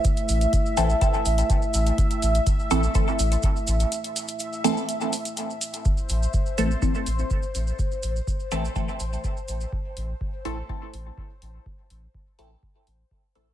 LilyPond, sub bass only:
\new Staff \with { instrumentName = "Sub bass" } { \clef bass \time 4/4 \key a \minor \tempo 4 = 124 r8 a,,8 r8 a,,8 r8 a,,8 r8 a,,8 | r8 a,,8 r8 a,,8 r8 a,,8 r8 a,,8 | r1 | r8 a,,8 r8 a,,8 r8 a,,8 r8 a,,8 |
r8 a,,8 r8 a,,8 r8 a,,8 r8 a,,8 | r8 a,,8 r8 a,,8 r8 a,,8 r8 a,,8 | r8 a,,8 r8 a,,8 r8 a,,8 r8 a,,8 | }